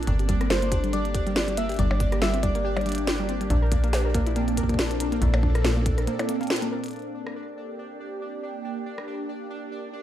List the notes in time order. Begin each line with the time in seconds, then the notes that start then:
Already playing: A#3 C4 D4 A4 D5
0.03 closed hi-hat
0.07 G1, kick, closed hi-hat
0.19 G4, closed hi-hat
0.29 G3, kick, closed hi-hat
0.41 C4, cross-stick, closed hi-hat
0.50 G3 G4 C5, snare, closed hi-hat
0.62 A#3, closed hi-hat
0.72 G4, kick, closed hi-hat
0.84 G3, closed hi-hat
0.93 G3 D5, closed hi-hat
1.05 closed hi-hat
1.15 G4, kick, closed hi-hat
1.27 G3, closed hi-hat
1.36 C4, snare, closed hi-hat
1.48 G3, closed hi-hat
1.57 A#3 E5, closed hi-hat
1.69 G4, closed hi-hat
1.72 closed hi-hat
1.74 closed hi-hat
1.76 G1, kick, closed hi-hat
1.79 G3 D5, closed hi-hat
1.91 G3, percussion blips
2.00 kick, closed hi-hat
2.12 G4, cross-stick, closed hi-hat
2.22 G3 E5, snare, closed hi-hat
2.34 C4, closed hi-hat
2.43 G3 D5, kick, closed hi-hat
2.55 A#3, closed hi-hat
2.65 G4
2.77 G3, closed hi-hat, percussion blips
2.81 closed hi-hat
2.86 G3, closed hi-hat
2.89 closed hi-hat
2.92 closed hi-hat
2.95 closed hi-hat
2.98 closed hi-hat
3.07 G4, snare, closed hi-hat
3.19 G3
3.29 C4, closed hi-hat
3.41 G3, closed hi-hat
3.50 A#1 A#2 D4, kick, closed hi-hat
3.62 A#4
3.72 A#3, kick, closed hi-hat
3.84 A#3, closed hi-hat
3.93 snare, closed hi-hat
4.05 A#4
4.15 A#3, kick, closed hi-hat
4.21 C4
4.27 E4, closed hi-hat
4.36 A#3, closed hi-hat
4.48 D4, closed hi-hat
4.57 A#4, kick, closed hi-hat
4.63 kick
4.69 A#3, kick, closed hi-hat
4.74 kick
4.79 A#3, snare, closed hi-hat
4.91 closed hi-hat
4.95 A4
5.00 A#4, closed hi-hat
5.12 A#3, closed hi-hat
5.22 A#1 E4, kick, closed hi-hat
5.34 A#3, closed hi-hat, percussion blips
5.43 D4, kick
5.55 A#4, cross-stick, closed hi-hat
5.65 A#3, snare, closed hi-hat
5.77 A#3
5.86 kick, closed hi-hat
5.98 A#4, cross-stick, closed hi-hat
6.07 A#3, closed hi-hat
6.19 E4, closed hi-hat, percussion blips
6.29 A#3, closed hi-hat
6.41 A#3, closed hi-hat
6.43 closed hi-hat
6.47 C4, snare, closed hi-hat
6.56 closed hi-hat
6.62 A#3, closed hi-hat
6.72 A#4
6.84 closed hi-hat
6.86 closed hi-hat
6.88 closed hi-hat
6.91 D4 D5, closed hi-hat
6.96 closed hi-hat
6.99 closed hi-hat
7.02 closed hi-hat
7.27 G4, cross-stick
8.98 cross-stick